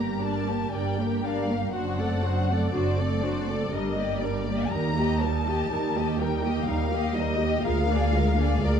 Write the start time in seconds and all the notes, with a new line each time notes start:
Already playing: G1 G2 A#3 G4 A#4 A#5
0.21 G3 D4 A#4 D5 A5
0.47 A#3 G4 A#4
0.72 G1 G2 G3 D4 A#4 D5 G5
0.98 A#3 G4 A#4
1.24 G3 D4 A#4 D5 F5
1.49 A#3 G4 A#4
1.73 F#1 F#2 F#3 D4 F#4 C5 F#5
1.98 A3 C4 A4 D5
2.24 F#3 D4 F#4 C5
2.49 A3 C4 A4 D5
2.71 F#1 F#2 F#3 D4 F#4 C5 D5
2.98 A3 C4 A4 D5
3.22 F#3 D4 F#4 C5
3.47 A3 C4 A4 D5
3.71 G1 G2 G3 D4 A#4 D#5
3.97 A#3 G4 D5
4.20 G3 D4 A#4 D5
4.47 A#3 G4 D5
4.70 D#2 G3 D#4 A#4 A#5
4.96 A#3 G4 D#5
5.20 G3 D#4 A#4 A5
5.47 A#3 G4 D#5
5.71 D#2 G3 D#4 A#4
5.96 A#3 G4 D#5
6.19 G3 D#4 A#4 G5
6.44 A#3 G4 D#5
6.66 D#2 G3 D#4 A#4 F5
6.90 A#3 G4
6.94 G4 D#5
7.15 G3 D#4 A#4 D#5
7.38 A#3 G4
7.44 G4 D#5
7.63 D2 G#3 F4 A#4 F5
7.88 A#3 D4 G#4 D5
8.12 G#3 F4 A#4
8.36 A#3 D4 G#4 D5
8.61 D2 G#3 F4 A#4 D5